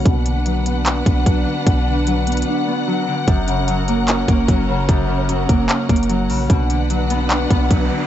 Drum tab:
HH |x-----------x-----------x-----------x-----------x-----------x-----------x-----------------------|x-----------------------x-----------x--x--x--x--------------------------------------------------|x-----------x-----------x-----------x-----------x-----------x-----------x-----------------------|x-----------------------x-----------x-----------x-----------x---x---x---x-----------o-----------|
CP |------------------------------------------------x-----------------------------------------------|------------------------------------------------------------------------------------------------|------------------------------------------------x-----------------------------------------------|------------------------------------------------x-----------------------------------------------|
BD |o-----------------------------------------------------------o-----------o-----------------------|o-----------------------------------------------------------------------------------------------|o-----------------------------------------------------------o-----------o-----------------------|o-----------------------------------o-----------------------o-----------------------------------|

HH |x-----------x-----------x-----------x-----------x-----------x-----------x-----------------------|
CP |------------------------------------------------x-----------------------------------------------|
BD |o-----------------------------------------------------------o-----------o-----------------------|